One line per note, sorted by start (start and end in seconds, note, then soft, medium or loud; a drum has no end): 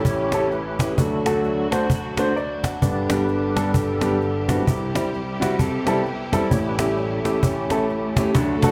0.00 0.94 A1 medium
0.00 0.94 A2 medium
0.00 2.79 A3 medium
0.00 0.47 C#4 medium
0.00 0.96 C#4 medium
0.00 0.93 E4 medium
0.00 0.94 G4 medium
0.04 0.50 E4 medium
0.04 0.50 G4 medium
0.04 0.53 C#5 loud
0.04 cajon bass medium
0.32 0.45 C#4 medium
0.32 0.46 E4 medium
0.32 0.46 G4 medium
0.32 0.46 A4 medium
0.32 cajon slap medium
0.51 0.95 E4 medium
0.51 0.94 G4 medium
0.51 0.94 B4 medium
0.51 cajon slap soft
0.79 0.92 C#4 medium
0.79 0.92 E4 medium
0.79 0.92 G4 medium
0.79 0.92 B4 medium
0.79 cajon bass medium
0.79 cajon slap medium
0.91 0.97 G#4 medium
0.96 2.78 D2 medium
0.96 1.67 D3 medium
0.96 2.78 D3 medium
0.96 1.68 F#3 soft
0.96 2.81 F#3 medium
0.96 1.68 A3 medium
0.96 4.63 D4 medium
0.96 1.86 D4 soft
0.96 2.80 F#4 medium
0.96 1.86 F#4 medium
0.96 1.68 A4 medium
0.96 cajon bass loud
1.25 1.38 A3 medium
1.25 1.38 D4 medium
1.25 1.38 F#4 medium
1.25 1.38 A4 medium
1.25 cajon slap loud
1.44 cajon slap soft
1.71 1.84 A3 medium
1.71 1.84 D4 medium
1.71 1.84 F#4 medium
1.71 1.84 C5 medium
1.71 cajon slap medium
1.90 cajon bass loud
2.17 2.30 A3 medium
2.17 2.31 D4 medium
2.17 2.31 F#4 medium
2.17 2.31 C5 medium
2.17 cajon slap medium
2.36 2.63 D5 medium
2.36 cajon slap soft
2.64 3.08 F#5 medium
2.64 cajon bass medium
2.64 cajon slap loud
2.81 4.63 G1 medium
2.81 4.62 G2 soft
2.81 4.63 G2 soft
2.81 4.63 D3 soft
2.81 4.65 G3 medium
2.81 4.65 B3 medium
2.81 4.63 B3 medium
2.81 3.09 G4 medium
2.81 8.31 G4 medium
2.81 3.08 B4 medium
2.81 3.11 D5 medium
2.81 cajon bass medium
3.09 3.23 G3 medium
3.09 3.23 B3 medium
3.09 3.72 D4 medium
3.09 3.23 D4 medium
3.09 3.98 G4 medium
3.09 3.23 G4 medium
3.09 3.76 B4 medium
3.09 cajon slap loud
3.28 cajon slap soft
3.56 3.69 G3 medium
3.56 3.69 B3 medium
3.56 3.69 D4 medium
3.56 3.69 A4 medium
3.56 cajon slap medium
3.73 4.62 D4 medium
3.73 4.44 A4 medium
3.73 cajon bass loud
4.01 4.14 G3 medium
4.01 4.15 B3 medium
4.01 4.15 D4 medium
4.01 4.15 G4 medium
4.01 cajon slap medium
4.21 cajon slap soft
4.48 4.61 G3 medium
4.48 4.61 B3 medium
4.48 5.36 C4 soft
4.48 4.61 D4 medium
4.48 4.94 E4 medium
4.48 4.61 F#4 medium
4.48 5.37 G4 medium
4.48 cajon bass medium
4.48 cajon slap medium
4.67 6.47 C2 medium
4.67 6.49 C3 medium
4.67 6.47 C3 medium
4.67 6.49 G3 medium
4.67 8.32 E4 medium
4.67 cajon bass loud
4.94 5.22 C3 soft
4.94 5.23 G3 soft
4.94 5.07 G3 medium
4.94 5.07 C4 medium
4.94 5.07 E4 medium
4.94 5.23 E4 medium
4.94 5.08 G4 medium
4.94 cajon slap medium
5.14 cajon slap soft
5.40 5.53 G3 medium
5.40 5.59 G3 medium
5.40 5.53 C4 medium
5.40 5.53 E4 medium
5.40 5.59 E4 medium
5.40 5.53 F#4 medium
5.40 cajon slap loud
5.59 5.86 C4 medium
5.59 5.86 A4 medium
5.59 cajon bass medium
5.85 6.02 C3 soft
5.85 6.03 G3 soft
5.85 5.99 G3 medium
5.85 6.48 B3 medium
5.85 5.99 C4 medium
5.85 6.03 E4 medium
5.85 6.00 E4 medium
5.85 6.48 G4 medium
5.85 6.00 A4 medium
5.85 cajon slap medium
6.06 cajon slap soft
6.32 6.45 G3 medium
6.32 6.45 C4 medium
6.32 6.46 E4 medium
6.32 6.46 A4 medium
6.32 cajon bass medium
6.32 cajon slap medium
6.49 8.31 A1 medium
6.49 7.20 A2 soft
6.49 8.31 A2 medium
6.49 7.21 G3 soft
6.49 8.71 A3 medium
6.49 6.77 C#4 medium
6.49 8.33 C#4 medium
6.49 6.78 E4 medium
6.49 7.39 G4 medium
6.49 6.59 C#5 loud
6.49 cajon bass loud
6.69 6.78 B4 medium
6.78 6.91 A3 medium
6.78 7.42 C#4 medium
6.78 6.92 C#4 medium
6.78 7.41 E4 medium
6.78 6.92 E4 medium
6.78 6.92 G4 medium
6.78 7.45 A4 medium
6.78 cajon slap loud
6.97 cajon slap soft
7.24 7.37 A3 medium
7.24 7.37 C#4 medium
7.24 7.38 E4 medium
7.24 7.38 G4 medium
7.24 cajon slap medium
7.43 8.31 C#4 medium
7.43 8.31 E4 medium
7.43 8.38 G4 medium
7.43 cajon bass loud
7.70 7.83 A3 medium
7.70 7.83 C#4 medium
7.70 7.84 E4 medium
7.70 7.84 A4 medium
7.70 cajon slap medium
7.89 cajon slap soft
8.16 8.30 A3 medium
8.16 8.30 C#4 medium
8.16 8.30 E4 medium
8.16 8.30 G4 medium
8.16 cajon bass medium
8.16 cajon slap loud
8.33 8.54 D2 medium
8.33 8.71 D3 soft
8.33 8.54 D3 medium
8.33 8.71 F#3 soft
8.33 8.71 A3 medium
8.33 8.71 D4 medium
8.33 8.71 D4 soft
8.33 8.71 F#4 medium
8.33 8.71 A4 medium
8.33 cajon bass loud
8.33 cajon slap loud
8.62 8.71 A3 medium
8.62 8.71 D4 medium
8.62 8.71 F#4 medium
8.62 8.71 A4 medium
8.62 cajon bass loud
8.62 cajon slap loud